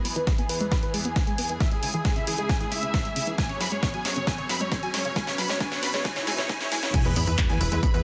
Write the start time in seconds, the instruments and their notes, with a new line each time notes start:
Already playing: string section E2 E3 B3 G#4, riser
0.05 synth arpeggio sound B3, digital synth lead B5, supersaw synth B5, open hi-hat
0.16 synth arpeggio sound E3, digital synth lead B4, supersaw synth B4, closed hi-hat
0.27 synth arpeggio sound G#3, supersaw synth B4, kick, snare, closed hi-hat
0.38 synth arpeggio sound B3, digital synth lead G#5, supersaw synth G#5, closed hi-hat
0.49 synth arpeggio sound E3, digital synth lead B4, supersaw synth B4, open hi-hat
0.60 synth arpeggio sound G#3, digital synth lead B4, supersaw synth B4, closed hi-hat
0.72 synth arpeggio sound B3, digital synth lead B5, supersaw synth B5, kick, snare, closed hi-hat
0.83 synth arpeggio sound E3, digital synth lead B4, supersaw synth B4, closed hi-hat
0.94 synth arpeggio sound G#3, digital synth lead G#5, supersaw synth G#5, open hi-hat
1.05 synth arpeggio sound B3, closed hi-hat
1.16 synth arpeggio sound E3, kick, snare, closed hi-hat
1.27 synth arpeggio sound G#3, closed hi-hat
1.38 synth arpeggio sound B3, open hi-hat
1.49 synth arpeggio sound E3, closed hi-hat
1.60 string section C#2 C#3 E4, synth arpeggio sound E3, digital synth lead E5, supersaw synth E5, kick, snare, closed hi-hat
1.72 synth arpeggio sound G#3, digital synth lead G#4, supersaw synth G#4, closed hi-hat
1.83 synth arpeggio sound C#3, digital synth lead G#5, supersaw synth G#5, open hi-hat
1.94 synth arpeggio sound E3, digital synth lead G#4, supersaw synth G#4, closed hi-hat
2.05 synth arpeggio sound G#3, digital synth lead G#4, supersaw synth G#4, kick, snare, closed hi-hat
2.16 synth arpeggio sound C#3, digital synth lead E5, supersaw synth E5, closed hi-hat
2.27 synth arpeggio sound E3, digital synth lead G#4, supersaw synth G#4, open hi-hat
2.38 synth arpeggio sound G#3, digital synth lead G#4, supersaw synth G#4, closed hi-hat
2.49 synth arpeggio sound C#3, digital synth lead G#5, supersaw synth G#5, kick, snare, closed hi-hat
2.60 synth arpeggio sound E3, digital synth lead G#4, supersaw synth G#4, closed hi-hat
2.71 synth arpeggio sound G#3, supersaw synth E5, digital synth lead E5, open hi-hat
2.83 synth arpeggio sound C#3, closed hi-hat
2.94 synth arpeggio sound E3, kick, snare, closed hi-hat
3.05 synth arpeggio sound G#3, closed hi-hat
3.16 synth arpeggio sound C#3, open hi-hat
3.27 synth arpeggio sound E3, closed hi-hat
3.38 string section F#2 F#3 C#4, synth arpeggio sound G#3, supersaw synth G#5, digital synth lead G#5, kick, snare, closed hi-hat
3.49 synth arpeggio sound C#3, supersaw synth C#5, digital synth lead C#5, closed hi-hat
3.60 synth arpeggio sound F#3, supersaw synth B5, digital synth lead B5, snare, open hi-hat
3.71 synth arpeggio sound G#3, supersaw synth C#5, digital synth lead C#5, closed hi-hat
3.83 synth arpeggio sound C#3, supersaw synth C#5, digital synth lead C#5, kick, snare, closed hi-hat
3.94 synth arpeggio sound F#3, supersaw synth G#5, digital synth lead G#5, closed hi-hat
4.05 synth arpeggio sound G#3, supersaw synth C#5, digital synth lead C#5, snare, open hi-hat
4.16 synth arpeggio sound C#3, supersaw synth C#5, digital synth lead C#5, closed hi-hat
4.27 synth arpeggio sound G#3, supersaw synth G#5, digital synth lead G#5, kick, snare, closed hi-hat
4.38 synth arpeggio sound C#3, supersaw synth C#5, digital synth lead C#5, closed hi-hat
4.49 synth arpeggio sound F#3, digital synth lead B5, supersaw synth B5, snare, open hi-hat
4.61 synth arpeggio sound G#3, digital synth lead C#5, supersaw synth C#5, closed hi-hat
4.72 synth arpeggio sound C#3, digital synth lead C#5, supersaw synth C#5, kick, snare, closed hi-hat
4.83 synth arpeggio sound F#3, digital synth lead G#5, supersaw synth G#5, closed hi-hat
4.94 synth arpeggio sound G#3, supersaw synth C#5, digital synth lead C#5, snare, open hi-hat
5.05 synth arpeggio sound C#3, supersaw synth C#5, digital synth lead C#5, closed hi-hat
5.16 string section B2 B4, synth arpeggio sound G#3, digital synth lead G#5, supersaw synth G#5, kick, snare, closed hi-hat
5.27 synth arpeggio sound C#3, digital synth lead C#5, supersaw synth C#5, snare, closed hi-hat
5.38 synth arpeggio sound F#3, digital synth lead B5, supersaw synth B5, snare, open hi-hat
5.49 synth arpeggio sound G#3, digital synth lead C#5, supersaw synth C#5, snare, closed hi-hat
5.60 synth arpeggio sound G#3, digital synth lead G#5, supersaw synth G#5, kick, snare, closed hi-hat
5.72 synth arpeggio sound C#3, digital synth lead C#5, supersaw synth C#5, snare, closed hi-hat
5.83 synth arpeggio sound F#3, digital synth lead B5, supersaw synth B5, snare, open hi-hat
5.94 synth arpeggio sound G#3, digital synth lead C#5, supersaw synth C#5, snare, closed hi-hat
6.05 synth arpeggio sound G#3, digital synth lead G#5, supersaw synth G#5, kick, snare, closed hi-hat, swell
6.16 synth arpeggio sound C#3, digital synth lead C#5, supersaw synth C#5, snare, closed hi-hat
6.27 synth arpeggio sound G#3, digital synth lead G#5, supersaw synth G#5, snare, open hi-hat
6.38 synth arpeggio sound C#3, digital synth lead C#5, supersaw synth C#5, snare, closed hi-hat
6.49 synth arpeggio sound G#3, digital synth lead G#5, supersaw synth G#5, kick, snare, closed hi-hat
6.61 synth arpeggio sound C#3, digital synth lead C#5, supersaw synth C#5, snare, closed hi-hat
6.72 synth arpeggio sound G#3, supersaw synth G#5, digital synth lead G#5, snare, open hi-hat
6.83 synth arpeggio sound C#3, supersaw synth C#5, digital synth lead C#5, snare, closed hi-hat
6.94 synth arpeggio sound E3, string section E3 E4 G#4 B4, supersaw synth G#5, digital synth lead G#5, kick, closed hi-hat, tambourine, crash, sub drop
7.05 analog synth bass E2, synth arpeggio sound G#3, supersaw synth B4, digital synth lead B4, closed hi-hat, tambourine
7.16 analog synth bass E2, synth arpeggio sound B3, supersaw synth B5, digital synth lead B5, open hi-hat, tambourine
7.27 analog synth bass E2, synth arpeggio sound E3, supersaw synth B4, digital synth lead B4, closed hi-hat, tambourine
7.38 synth arpeggio sound G#3, supersaw synth B4, kick, clap, closed hi-hat, tambourine
7.49 analog synth bass E2, synth arpeggio sound B3, supersaw synth G#5, digital synth lead G#5, closed hi-hat, tambourine
7.60 analog synth bass E1, synth arpeggio sound E3, supersaw synth B4, digital synth lead B4, open hi-hat, tambourine
7.72 analog synth bass E2, synth arpeggio sound G#3, supersaw synth B4, digital synth lead B4, closed hi-hat, tambourine
7.83 synth arpeggio sound B3, supersaw synth B5, digital synth lead B5, kick, closed hi-hat, tambourine
7.94 analog synth bass E2, synth arpeggio sound E3, supersaw synth B4, digital synth lead B4, closed hi-hat, tambourine